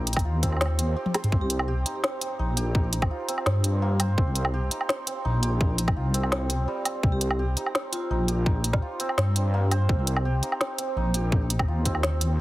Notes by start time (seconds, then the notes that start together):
Already playing: A#1 G3 A#3 C4 F4 G4 C5
0.07 D#4, closed hi-hat
0.13 kick, closed hi-hat, low woodblock
0.19 closed hi-hat
0.25 D#2 F4
0.43 C4, kick, closed hi-hat
0.52 low woodblock
0.57 low woodblock
0.61 C4, snare, low woodblock
0.66 low woodblock
0.79 C4, closed hi-hat
0.96 G4
1.06 high tom
1.14 C5, snare, closed hi-hat, low woodblock
1.24 closed hi-hat, mid tom
1.32 C2 C4, kick
1.41 G4
1.50 G4 C5, closed hi-hat
1.59 low woodblock
1.68 G4
1.86 D#4, closed hi-hat
2.03 C4, snare
2.21 C4, closed hi-hat
2.39 A#1 D#4
2.57 G4, closed hi-hat
2.75 D#4, kick
2.93 D#4, closed hi-hat
3.02 kick, low woodblock
3.11 F4
3.28 C4, closed hi-hat
3.38 low woodblock
3.46 G2 C4, snare
3.64 C4, closed hi-hat
3.82 A#3
4.00 C5, closed hi-hat, low woodblock
4.18 C2 C4, kick
4.36 C5, closed hi-hat
4.45 low woodblock
4.54 G4
4.71 D#4, closed hi-hat
4.81 low woodblock
4.89 C4, snare
5.07 C4, closed hi-hat
5.25 A#1 D#4
5.43 G4, closed hi-hat
5.61 D#4, kick
5.78 D#4, closed hi-hat
5.88 kick, low woodblock
5.96 C2 F4
6.14 C4, closed hi-hat
6.23 low woodblock
6.32 C4, snare
6.50 C4, closed hi-hat
6.68 G3
6.85 C4, closed hi-hat, low woodblock
7.03 C2 C4, kick
7.12 G4
7.21 G4 C5, closed hi-hat
7.31 low woodblock
7.39 G4
7.57 D#4, closed hi-hat
7.66 low woodblock
7.75 C4, snare
7.92 C4 F4, closed hi-hat
8.10 A#1 D#4
8.28 G4, closed hi-hat
8.46 D#4, kick
8.64 D#4, closed hi-hat
8.73 kick, low woodblock
8.82 F4
9.00 C4, closed hi-hat
9.09 low woodblock
9.18 G2 C4, snare
9.36 C4, closed hi-hat
9.54 A#3
9.71 C5, closed hi-hat, low woodblock
9.89 C2 C4, kick
10.07 C5, closed hi-hat
10.16 low woodblock
10.25 G4
10.43 D#4, closed hi-hat
10.52 low woodblock
10.61 C4, snare
10.78 C4, closed hi-hat
10.96 A#1 D#4
11.14 G4, closed hi-hat
11.32 D#4, kick
11.50 D#4, closed hi-hat
11.59 kick, low woodblock
11.68 D#2 F4
11.85 C4, kick, closed hi-hat
11.95 low woodblock
12.03 C4, snare
12.21 C4, closed hi-hat